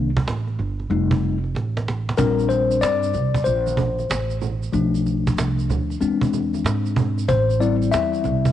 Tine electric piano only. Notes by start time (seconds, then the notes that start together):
0.90 G3 A3 D#4
2.17 G3 C4 D4 A#4
2.49 C5
2.81 D5
3.44 C5
4.73 F3 A3 D4
6.01 G#3 C4 D4
7.29 C5
7.60 G3 C4 E4 D5
7.91 E5